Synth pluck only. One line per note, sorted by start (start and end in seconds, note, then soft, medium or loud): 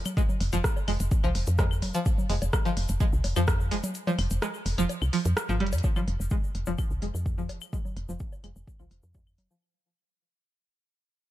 0.17 0.21 G#3 medium
0.53 0.57 F3 loud
0.88 0.92 G#3 medium
1.24 1.28 F3 loud
1.59 1.63 G#3 medium
1.95 1.99 F3 loud
2.30 2.34 G#3 medium
2.65 2.70 F3 loud
3.00 3.05 G#3 medium
3.36 3.40 F3 loud
3.71 3.76 G#3 medium
4.07 4.11 F3 loud
4.42 4.47 G#3 medium
4.78 4.82 F3 loud
5.13 5.17 F3 medium
5.49 5.55 F3 medium
5.60 5.65 G3 medium
5.96 6.00 F3 medium
6.31 6.36 G#3 medium
6.67 6.71 F3 loud
7.02 7.06 G#3 medium
7.38 7.42 F3 loud
7.73 7.77 G#3 medium
8.09 8.13 F3 loud
8.44 8.48 G#3 medium
8.80 8.84 F3 loud
9.15 9.19 G#3 medium
9.51 9.55 F3 loud